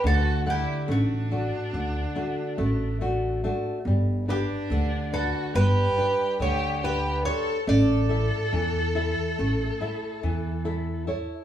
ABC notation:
X:1
M:9/8
L:1/8
Q:3/8=47
K:D
V:1 name="Bouzouki"
A G F6 z | z G2 A B2 c B c | d8 z |]
V:2 name="Violin"
F E D6 z | z D2 F G2 G G A | A8 z |]
V:3 name="Nylon-string guitar"
D, [A,Df] A, [A,DF] D, [A,DF] A, [A,DF] [A,DF] | G, [DGB] D, [DB] G, [DGB] D, [DGB] [DGB] | A, [EAe] E, [EAe] A, [EAe] E, [EAe] [EAc] |]
V:4 name="Upright bass" clef=bass
D,,2 A,,,2 D,, z A,,,3 | G,,,2 D,,2 G,,, z D,,3 | A,,,2 E,,2 A,,, z E,,3 |]